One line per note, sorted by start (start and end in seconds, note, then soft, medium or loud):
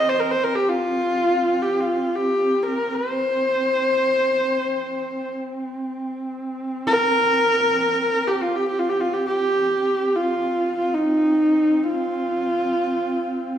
0.00 4.34 C4 medium
0.00 0.11 D#5 medium
0.09 0.21 C5 medium
0.20 0.33 A#4 medium
0.31 0.45 C5 medium
0.44 0.57 A#4 medium
0.55 0.70 G4 medium
0.68 1.64 F4 medium
1.62 1.82 G4 medium
1.81 2.17 F4 medium
2.15 2.64 G4 medium
2.63 2.96 A#4 medium
2.95 5.34 C5 medium
4.35 10.69 C4 medium
6.87 8.29 A#4 loud
8.27 8.44 G4 medium
8.42 8.57 F4 medium
8.56 8.68 G4 medium
8.69 8.81 G4 medium
8.79 8.91 F4 medium
8.89 9.02 G4 medium
9.01 9.15 F4 medium
9.14 9.26 G4 medium
9.27 10.17 G4 medium
10.16 10.76 F4 medium
10.70 13.58 C4 medium
10.77 10.96 F4 medium
10.94 11.89 D#4 medium
11.89 13.58 F4 medium